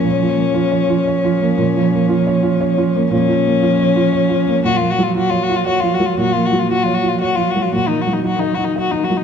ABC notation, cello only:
X:1
M:3/4
L:1/16
Q:1/4=117
K:Bbm
V:1 name="Cello" clef=bass
F,12- | F,12 | F,12 | G, F, G, F, G, F, G, F, G, F, G, F, |
G, F, G, F, G, F, G, F, G, F, G, F, | G, E, G, E, G, E, G, E, G, E, G, E, |]